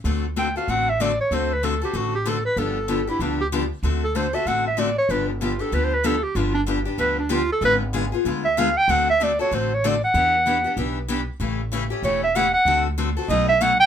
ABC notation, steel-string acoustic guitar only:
X:1
M:4/4
L:1/8
Q:"Swing" 1/4=190
K:Dmix
V:1 name="Steel-string acoustic guitar"
[D,A,CFA] z [D,A,CFA] [CFA] [D,A,CFA] z [D,A,CFA] z | [D,A,CFA] z [D,A,CFA] [CFA] [D,A,CFA] z [D,A,CFA] z | [D,=F,B,DG] z [D,F,B,DG] [B,DG] [D,F,B,DG] z [D,F,B,DG] z | [D,A,CFA] z [D,A,CFA] [CFA] [D,A,CFA] z [D,A,CFA] z |
[D,=F,B,DG] z [D,F,B,DG] [B,DG] [D,F,B,DG] z [D,F,B,DG] z | [D,=F,B,DG] z [D,F,B,DG] [B,DG] [D,F,B,DG] z [D,F,B,DG] z | [D,^G,B,^E^G] z [D,G,B,EG] [B,EG] [D,G,B,EG] z [D,G,B,EG] z | [D,A,CFA] z [D,A,CFA] [CFA] [D,A,CFA] z [D,A,CFA] z |
[E,B,DG] z [E,B,DG] [B,DG] [E,B,DG] z [E,B,DG] z | [^C,E,A,^CG] z [C,E,A,CG] [A,CG] [C,E,A,CG] z [C,E,A,CG] z | [D,A,CFA] z [D,A,CFA] [CFA] [B,,F,A,^DF] z [B,,F,A,DF] z |]